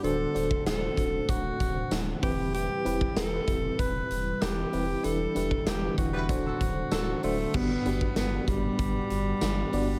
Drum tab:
CC |----------------|----------------|----------------|x---------------|
HH |x-x-x-x-x-x-x-o-|x-x-x-x-x-x-x-o-|x-x-x-x-x-x-x-o-|--x-x-x-x-x-x-o-|
TB |----x-------x---|----x-------x---|----x-------x---|----x-------x---|
SD |----o-------o---|----o-------o---|----o-------o---|----o-------o---|
BD |---o--o-o-o---o-|---o--o-o-------|---o--o-o-o-----|o--o--o-o-------|